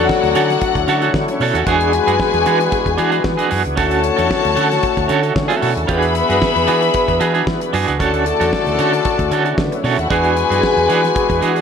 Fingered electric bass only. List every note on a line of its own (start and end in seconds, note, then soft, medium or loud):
0.23 0.33 D2 loud
0.35 0.56 D3 loud
0.76 0.85 D2 loud
0.88 1.08 D3 loud
1.14 1.25 D3 loud
1.40 1.51 B2 medium
1.54 1.64 D#2 loud
1.67 1.98 E2 loud
2.07 2.17 F#2 loud
2.34 2.43 E2 loud
2.46 2.67 E3 loud
2.86 2.96 E2 loud
2.99 3.19 E3 loud
3.24 3.35 E3 loud
3.52 3.62 F#2 loud
3.66 3.78 C#2 loud
3.78 4.09 D2 loud
4.18 4.28 E2 loud
4.45 4.54 D2 loud
4.57 4.77 D3 loud
4.97 5.07 D2 loud
5.10 5.30 D3 loud
5.36 5.47 D3 loud
5.63 5.73 B2 medium
5.76 5.86 D#2 loud
5.89 6.20 E2 loud
6.30 6.39 F#2 medium
6.56 6.65 E2 loud
6.69 6.89 E3 loud
7.09 7.18 E2 loud
7.21 7.41 E3 loud
7.47 7.58 E3 loud
7.73 7.84 F#2 loud
7.88 8.00 C#2 loud
8.00 8.31 D2 loud
8.41 8.50 E2 loud
8.67 8.76 D2 loud
8.79 8.99 D3 loud
9.19 9.29 D2 loud
9.31 9.52 D3 loud
9.58 9.69 D3 loud
9.84 9.95 B2 loud
9.98 10.08 D#2 loud
10.11 10.42 E2 loud
10.50 10.60 F#2 loud
10.77 10.86 E2 loud
10.90 11.10 E3 loud
11.30 11.39 E2 loud
11.43 11.61 E3 medium